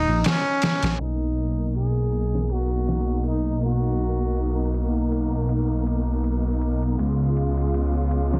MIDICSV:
0, 0, Header, 1, 5, 480
1, 0, Start_track
1, 0, Tempo, 750000
1, 640, Time_signature, 4, 2, 24, 8
1, 5375, End_track
2, 0, Start_track
2, 0, Title_t, "Muted trumpet"
2, 0, Program_c, 0, 59
2, 0, Note_on_c, 0, 63, 91
2, 166, Note_on_c, 0, 61, 92
2, 176, Note_off_c, 0, 63, 0
2, 643, Note_on_c, 0, 63, 85
2, 653, Note_off_c, 0, 61, 0
2, 1122, Note_off_c, 0, 63, 0
2, 1126, Note_on_c, 0, 68, 91
2, 1611, Note_on_c, 0, 66, 95
2, 1620, Note_off_c, 0, 68, 0
2, 2085, Note_off_c, 0, 66, 0
2, 2090, Note_on_c, 0, 63, 80
2, 2308, Note_off_c, 0, 63, 0
2, 2335, Note_on_c, 0, 66, 90
2, 3262, Note_off_c, 0, 66, 0
2, 5375, End_track
3, 0, Start_track
3, 0, Title_t, "String section"
3, 0, Program_c, 1, 48
3, 639, Note_on_c, 1, 58, 65
3, 639, Note_on_c, 1, 63, 73
3, 640, Note_on_c, 1, 59, 60
3, 4454, Note_off_c, 1, 58, 0
3, 4454, Note_off_c, 1, 63, 0
3, 4479, Note_on_c, 1, 65, 70
3, 4481, Note_on_c, 1, 49, 63
3, 4481, Note_on_c, 1, 56, 62
3, 5375, Note_off_c, 1, 49, 0
3, 5375, Note_off_c, 1, 56, 0
3, 5375, Note_off_c, 1, 59, 0
3, 5375, Note_off_c, 1, 65, 0
3, 5375, End_track
4, 0, Start_track
4, 0, Title_t, "Detuned saw bass"
4, 0, Program_c, 2, 39
4, 49, Note_on_c, 2, 34, 69
4, 146, Note_off_c, 2, 34, 0
4, 528, Note_on_c, 2, 34, 92
4, 625, Note_off_c, 2, 34, 0
4, 638, Note_on_c, 2, 35, 81
4, 4457, Note_off_c, 2, 35, 0
4, 4478, Note_on_c, 2, 37, 81
4, 5375, Note_off_c, 2, 37, 0
4, 5375, End_track
5, 0, Start_track
5, 0, Title_t, "Drums"
5, 155, Note_on_c, 9, 51, 81
5, 166, Note_on_c, 9, 38, 103
5, 219, Note_off_c, 9, 51, 0
5, 230, Note_off_c, 9, 38, 0
5, 395, Note_on_c, 9, 51, 75
5, 405, Note_on_c, 9, 38, 97
5, 459, Note_off_c, 9, 51, 0
5, 469, Note_off_c, 9, 38, 0
5, 528, Note_on_c, 9, 51, 77
5, 538, Note_on_c, 9, 38, 98
5, 592, Note_off_c, 9, 51, 0
5, 602, Note_off_c, 9, 38, 0
5, 638, Note_on_c, 9, 51, 71
5, 702, Note_off_c, 9, 51, 0
5, 879, Note_on_c, 9, 51, 56
5, 943, Note_off_c, 9, 51, 0
5, 1013, Note_on_c, 9, 51, 36
5, 1077, Note_off_c, 9, 51, 0
5, 1119, Note_on_c, 9, 51, 73
5, 1183, Note_off_c, 9, 51, 0
5, 1356, Note_on_c, 9, 51, 60
5, 1420, Note_off_c, 9, 51, 0
5, 1501, Note_on_c, 9, 38, 43
5, 1565, Note_off_c, 9, 38, 0
5, 1597, Note_on_c, 9, 51, 68
5, 1661, Note_off_c, 9, 51, 0
5, 1731, Note_on_c, 9, 51, 36
5, 1795, Note_off_c, 9, 51, 0
5, 1836, Note_on_c, 9, 51, 56
5, 1846, Note_on_c, 9, 38, 46
5, 1900, Note_off_c, 9, 51, 0
5, 1910, Note_off_c, 9, 38, 0
5, 2072, Note_on_c, 9, 51, 73
5, 2136, Note_off_c, 9, 51, 0
5, 2207, Note_on_c, 9, 51, 38
5, 2271, Note_off_c, 9, 51, 0
5, 2313, Note_on_c, 9, 51, 56
5, 2377, Note_off_c, 9, 51, 0
5, 2445, Note_on_c, 9, 51, 35
5, 2509, Note_off_c, 9, 51, 0
5, 2550, Note_on_c, 9, 51, 69
5, 2614, Note_off_c, 9, 51, 0
5, 2795, Note_on_c, 9, 51, 52
5, 2859, Note_off_c, 9, 51, 0
5, 3035, Note_on_c, 9, 51, 74
5, 3099, Note_off_c, 9, 51, 0
5, 3276, Note_on_c, 9, 51, 59
5, 3340, Note_off_c, 9, 51, 0
5, 3513, Note_on_c, 9, 51, 70
5, 3577, Note_off_c, 9, 51, 0
5, 3753, Note_on_c, 9, 51, 57
5, 3817, Note_off_c, 9, 51, 0
5, 3993, Note_on_c, 9, 51, 70
5, 4057, Note_off_c, 9, 51, 0
5, 4233, Note_on_c, 9, 51, 60
5, 4297, Note_off_c, 9, 51, 0
5, 4368, Note_on_c, 9, 51, 37
5, 4432, Note_off_c, 9, 51, 0
5, 4474, Note_on_c, 9, 51, 73
5, 4538, Note_off_c, 9, 51, 0
5, 4714, Note_on_c, 9, 51, 55
5, 4778, Note_off_c, 9, 51, 0
5, 4847, Note_on_c, 9, 51, 38
5, 4911, Note_off_c, 9, 51, 0
5, 4954, Note_on_c, 9, 51, 75
5, 5018, Note_off_c, 9, 51, 0
5, 5191, Note_on_c, 9, 51, 58
5, 5255, Note_off_c, 9, 51, 0
5, 5335, Note_on_c, 9, 38, 48
5, 5375, Note_off_c, 9, 38, 0
5, 5375, End_track
0, 0, End_of_file